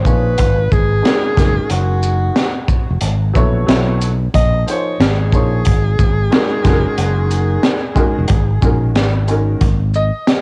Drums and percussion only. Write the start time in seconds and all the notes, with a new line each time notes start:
0.05 kick, shaker
0.38 kick, closed hi-hat
0.72 kick, shaker
1.05 snare, closed hi-hat
1.37 kick, snare, closed hi-hat, shaker
1.70 closed hi-hat
2.03 shaker
2.36 snare, closed hi-hat
2.68 kick, shaker
3.01 closed hi-hat
3.35 kick, shaker
3.69 snare, closed hi-hat
4.01 closed hi-hat, shaker
4.34 kick, closed hi-hat
4.68 closed hi-hat, shaker
5.00 snare, closed hi-hat
5.32 kick, shaker
5.65 kick, closed hi-hat
5.99 kick, shaker
6.32 snare, closed hi-hat
6.65 kick, snare, closed hi-hat, shaker
6.98 closed hi-hat
7.31 closed hi-hat, shaker
7.63 snare, closed hi-hat
7.96 kick, shaker
8.28 kick, closed hi-hat
8.62 kick, shaker
8.96 snare, closed hi-hat
9.28 closed hi-hat, shaker
9.61 kick, closed hi-hat
9.94 shaker
10.27 snare, closed hi-hat